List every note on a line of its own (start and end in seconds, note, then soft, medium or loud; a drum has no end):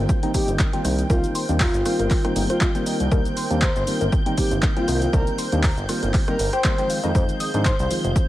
0.00 0.20 D#3 medium
0.00 0.20 G3 medium
0.00 0.20 A#3 medium
0.00 0.20 C4 medium
0.00 6.86 D#4 medium
0.00 0.20 F4 medium
0.00 6.86 A#4 medium
0.00 8.28 C5 medium
0.00 6.86 G5 medium
0.00 8.28 G6 medium
0.09 kick loud
0.09 shaker soft
0.23 0.32 D#3 loud
0.23 0.32 G3 medium
0.23 0.32 A#3 medium
0.23 0.32 C4 medium
0.23 0.32 D#4 loud
0.23 0.29 G5 medium
0.23 closed hi-hat medium
0.34 0.70 D#3 medium
0.34 0.70 G3 medium
0.34 0.70 A#3 medium
0.34 0.70 C4 medium
0.34 0.70 D#4 loud
0.34 0.50 G4 medium
0.34 kick medium
0.34 open hi-hat loud
0.34 shaker medium
0.48 0.56 G1 medium
0.48 0.54 C5 medium
0.48 closed hi-hat medium
0.48 shaker soft
0.59 kick loud
0.59 clap loud
0.59 shaker soft
0.73 0.83 D#3 loud
0.73 0.83 G3 medium
0.73 0.83 A#3 medium
0.73 0.83 C4 medium
0.73 0.83 F4 loud
0.73 0.83 G5 medium
0.73 closed hi-hat medium
0.85 1.03 C2 medium
0.85 1.07 D#3 medium
0.85 1.07 G3 medium
0.85 1.07 A#3 medium
0.85 1.07 C4 medium
0.85 1.07 D#4 medium
0.85 cross-stick medium
0.85 open hi-hat loud
0.85 shaker medium
0.99 closed hi-hat medium
0.99 shaker soft
1.10 1.19 C2 loud
1.10 1.46 D#3 medium
1.10 1.46 G3 medium
1.10 1.46 A#3 medium
1.10 1.46 C4 medium
1.10 1.46 D#4 medium
1.10 1.26 F4 medium
1.10 1.17 A#4 loud
1.10 kick loud
1.10 shaker soft
1.24 closed hi-hat soft
1.24 shaker soft
1.35 1.40 C6 medium
1.35 open hi-hat loud
1.35 shaker medium
1.49 1.65 D#2 medium
1.49 1.58 D#3 loud
1.49 1.58 G3 medium
1.49 1.58 A#3 medium
1.49 1.58 C4 medium
1.49 1.58 D4 loud
1.49 closed hi-hat medium
1.49 shaker soft
1.60 2.31 F4 loud
1.60 1.68 A#5 medium
1.60 kick loud
1.60 clap loud
1.60 open hi-hat medium
1.60 shaker soft
1.74 1.82 G1 medium
1.74 closed hi-hat soft
1.74 shaker soft
1.85 2.21 D#3 medium
1.85 2.21 G3 medium
1.85 2.21 A#3 medium
1.85 2.21 C4 medium
1.85 2.21 F4 medium
1.85 cross-stick medium
1.85 open hi-hat loud
1.85 shaker medium
1.99 2.07 G1 medium
1.99 2.06 A#4 medium
1.99 closed hi-hat medium
1.99 shaker soft
2.10 kick loud
2.10 clap medium
2.10 open hi-hat medium
2.10 shaker soft
2.24 2.34 D#3 loud
2.24 2.34 G3 medium
2.24 2.34 A#3 medium
2.24 2.34 C4 medium
2.24 2.34 D#4 loud
2.24 2.31 G5 medium
2.24 cross-stick medium
2.24 closed hi-hat medium
2.36 2.45 G1 loud
2.36 2.72 D#3 medium
2.36 2.72 G3 medium
2.36 2.72 A#3 medium
2.36 2.72 C4 medium
2.36 2.72 D#4 loud
2.36 open hi-hat loud
2.36 shaker medium
2.50 2.57 F4 medium
2.50 2.56 C5 medium
2.50 cross-stick medium
2.50 closed hi-hat medium
2.50 shaker soft
2.61 2.70 F4 medium
2.61 kick loud
2.61 clap loud
2.61 shaker soft
2.75 2.85 D#3 loud
2.75 2.85 G3 medium
2.75 2.85 A#3 medium
2.75 2.85 C4 medium
2.75 2.85 F4 loud
2.75 2.84 G5 medium
2.75 closed hi-hat medium
2.75 shaker soft
2.86 3.09 D#3 medium
2.86 3.09 G3 medium
2.86 3.09 A#3 medium
2.86 3.09 C4 medium
2.86 3.09 D#4 medium
2.86 open hi-hat loud
2.86 shaker medium
3.00 3.08 C2 medium
3.00 closed hi-hat medium
3.00 shaker soft
3.12 3.21 C2 loud
3.12 3.47 D#3 medium
3.12 3.47 G3 medium
3.12 3.47 A#3 medium
3.12 3.47 C4 medium
3.12 3.47 D#4 medium
3.12 3.19 A#4 loud
3.12 kick loud
3.12 shaker soft
3.25 closed hi-hat soft
3.25 shaker soft
3.37 3.41 C6 medium
3.37 open hi-hat loud
3.37 shaker medium
3.51 3.67 D#2 medium
3.51 3.60 D#3 loud
3.51 3.60 G3 medium
3.51 3.60 A#3 medium
3.51 3.60 C4 medium
3.51 3.60 D4 loud
3.51 closed hi-hat medium
3.51 shaker soft
3.62 3.71 C5 medium
3.62 3.70 A#5 medium
3.62 kick loud
3.62 clap loud
3.62 shaker soft
3.76 3.84 G1 medium
3.76 3.83 C5 medium
3.76 closed hi-hat soft
3.76 shaker soft
3.87 4.23 D#3 medium
3.87 4.23 G3 medium
3.87 4.23 A#3 medium
3.87 4.23 C4 medium
3.87 4.23 F4 medium
3.87 open hi-hat loud
3.87 shaker medium
4.01 4.09 G1 medium
4.01 4.07 A#4 medium
4.01 closed hi-hat medium
4.01 shaker soft
4.12 kick loud
4.12 shaker soft
4.26 4.35 D#3 loud
4.26 4.35 G3 medium
4.26 4.35 A#3 medium
4.26 4.35 C4 medium
4.26 4.35 D#4 loud
4.26 4.32 G5 medium
4.26 closed hi-hat medium
4.38 4.73 D#3 medium
4.38 4.73 G3 medium
4.38 4.73 A#3 medium
4.38 4.73 C4 medium
4.38 4.73 D#4 loud
4.38 4.53 G4 medium
4.38 kick medium
4.38 open hi-hat loud
4.38 shaker medium
4.51 4.59 G1 medium
4.51 4.58 C5 medium
4.51 closed hi-hat medium
4.51 shaker soft
4.62 kick loud
4.62 clap loud
4.62 shaker soft
4.77 4.86 D#3 medium
4.77 4.86 G3 medium
4.77 4.86 A#3 medium
4.77 4.86 C4 medium
4.77 4.86 F4 medium
4.77 4.86 F4 loud
4.77 4.86 G5 medium
4.77 closed hi-hat medium
4.88 5.06 C2 medium
4.88 5.10 D#3 medium
4.88 5.11 G3 medium
4.88 5.11 A#3 medium
4.88 5.11 C4 medium
4.88 5.11 D#4 medium
4.88 4.97 F4 medium
4.88 cross-stick medium
4.88 open hi-hat loud
4.88 shaker medium
5.02 5.09 F4 medium
5.02 closed hi-hat medium
5.02 shaker soft
5.13 5.23 C2 loud
5.13 5.49 D#3 medium
5.13 5.49 G3 medium
5.13 5.49 A#3 medium
5.13 5.49 C4 medium
5.13 5.49 D#4 medium
5.13 5.29 A#4 medium
5.13 5.21 A#4 loud
5.13 kick loud
5.13 shaker soft
5.27 closed hi-hat soft
5.27 shaker soft
5.38 5.43 C6 medium
5.38 open hi-hat loud
5.38 shaker medium
5.52 5.69 D#2 medium
5.52 5.62 D#3 medium
5.52 5.62 G3 medium
5.52 5.62 A#3 medium
5.52 5.62 C4 medium
5.52 5.62 D4 loud
5.52 closed hi-hat medium
5.52 shaker soft
5.63 5.71 A#5 medium
5.63 kick loud
5.63 clap loud
5.63 open hi-hat medium
5.63 shaker soft
5.77 5.85 G1 medium
5.77 closed hi-hat soft
5.77 shaker soft
5.89 6.25 D#3 medium
5.89 6.25 G3 medium
5.89 6.25 A#3 medium
5.89 6.25 C4 medium
5.89 6.25 F4 medium
5.89 cross-stick medium
5.89 open hi-hat loud
5.89 shaker medium
6.03 6.10 G1 medium
6.03 6.09 A#4 medium
6.03 closed hi-hat medium
6.03 shaker soft
6.14 kick loud
6.14 clap medium
6.14 open hi-hat medium
6.14 shaker soft
6.28 6.37 D#3 loud
6.28 6.37 G3 medium
6.28 6.37 A#3 medium
6.28 6.37 C4 medium
6.28 6.37 D#4 loud
6.28 6.50 A#4 loud
6.28 6.34 G5 medium
6.28 cross-stick medium
6.28 closed hi-hat soft
6.39 6.49 G1 loud
6.39 open hi-hat loud
6.39 shaker medium
6.53 6.90 C5 loud
6.53 6.62 G5 loud
6.53 cross-stick medium
6.53 closed hi-hat medium
6.53 shaker soft
6.64 6.75 D#3 loud
6.64 6.75 G3 medium
6.64 6.75 A#3 medium
6.64 6.75 C4 medium
6.64 6.75 D#4 loud
6.64 kick loud
6.64 clap loud
6.64 shaker soft
6.78 7.00 D#3 medium
6.78 7.00 F3 medium
6.78 7.00 G#3 medium
6.78 7.00 C4 medium
6.78 7.00 D#4 medium
6.78 6.82 G5 medium
6.78 closed hi-hat soft
6.78 shaker soft
6.90 8.28 D#4 medium
6.90 8.28 G#4 medium
6.90 6.97 F5 medium
6.90 8.28 F5 medium
6.90 open hi-hat loud
6.90 shaker medium
7.04 7.11 F2 medium
7.04 7.12 D#3 loud
7.04 7.12 F3 medium
7.04 7.12 G#3 medium
7.04 7.12 C4 medium
7.04 7.12 D#4 loud
7.04 7.13 D#5 loud
7.04 closed hi-hat medium
7.04 shaker soft
7.15 7.24 F2 loud
7.15 7.51 D#3 medium
7.15 7.51 F3 medium
7.15 7.51 G#3 medium
7.15 7.51 C4 medium
7.15 7.51 D#4 medium
7.15 7.22 C5 loud
7.15 kick loud
7.15 shaker soft
7.29 closed hi-hat soft
7.29 shaker soft
7.40 7.45 D#6 medium
7.40 open hi-hat loud
7.40 shaker medium
7.54 7.70 G#2 medium
7.54 7.63 D#3 medium
7.54 7.63 F3 medium
7.54 7.63 G#3 medium
7.54 7.63 C4 medium
7.54 7.63 D4 loud
7.54 closed hi-hat medium
7.54 shaker soft
7.65 7.74 C5 medium
7.65 7.73 C6 medium
7.65 kick loud
7.65 clap loud
7.65 shaker soft
7.79 7.87 C2 medium
7.79 7.86 C5 medium
7.79 closed hi-hat soft
7.79 shaker soft
7.91 8.26 D#3 medium
7.91 8.26 F3 medium
7.91 8.26 G#3 medium
7.91 8.26 C4 medium
7.91 8.26 F4 medium
7.91 open hi-hat loud
7.91 shaker medium
8.04 8.12 F1 medium
8.04 8.11 C5 medium
8.04 closed hi-hat medium
8.04 shaker soft
8.16 kick loud
8.16 shaker soft